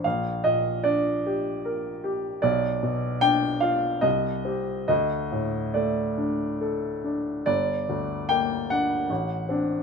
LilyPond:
\new Staff \with { instrumentName = "Grand piano" } { \time 3/4 \key g \minor \tempo 4 = 74 << { f''8 ees''8 d''2 | d''4 g''8 f''8 ees''4 | ees''4 d''4. r8 | d''4 g''8 fis''4. | } \\ { bes,,8 bes,8 d'8 g'8 bes'8 g'8 | b,,8 b,8 d'8 f'8 c,8 <c' g'>8 | d,8 a,8 a8 d'8 a'8 d'8 | g,,8 d,8 bes8 d'8 a,,8 <c' d'>8 | } >> }